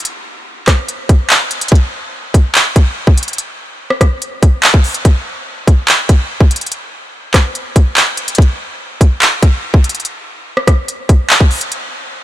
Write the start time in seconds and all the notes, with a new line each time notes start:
0.05 closed hi-hat
0.68 kick, cross-stick, clap, closed hi-hat
0.89 closed hi-hat
1.09 kick, closed hi-hat
1.30 clap, closed hi-hat
1.51 closed hi-hat
1.61 closed hi-hat
1.68 kick, closed hi-hat
1.75 closed hi-hat
2.34 kick, closed hi-hat
2.55 clap, closed hi-hat
2.76 kick, closed hi-hat
3.07 kick
3.18 closed hi-hat
3.23 closed hi-hat
3.28 closed hi-hat
3.33 closed hi-hat
3.38 closed hi-hat
3.90 cross-stick
4.01 kick, cross-stick, closed hi-hat
4.22 closed hi-hat
4.43 kick, closed hi-hat
4.63 clap, closed hi-hat
4.74 kick
4.84 open hi-hat
4.94 closed hi-hat
5.05 kick, closed hi-hat
5.67 kick, closed hi-hat
5.88 clap, closed hi-hat
6.09 kick, closed hi-hat
6.41 kick
6.51 closed hi-hat
6.56 closed hi-hat
6.61 closed hi-hat
6.67 closed hi-hat
6.72 closed hi-hat
7.34 kick, cross-stick, clap, closed hi-hat
7.55 closed hi-hat
7.76 kick, closed hi-hat
7.97 clap, closed hi-hat
8.17 closed hi-hat
8.28 closed hi-hat
8.35 kick, closed hi-hat
8.42 closed hi-hat
9.01 kick, closed hi-hat
9.22 clap, closed hi-hat
9.43 kick, closed hi-hat
9.74 kick
9.84 closed hi-hat
9.89 closed hi-hat
9.95 closed hi-hat
10.00 closed hi-hat
10.05 closed hi-hat
10.57 cross-stick
10.67 kick, cross-stick, closed hi-hat
10.88 closed hi-hat
11.09 kick, closed hi-hat
11.30 clap, closed hi-hat
11.40 kick
11.51 open hi-hat
11.61 closed hi-hat
11.72 closed hi-hat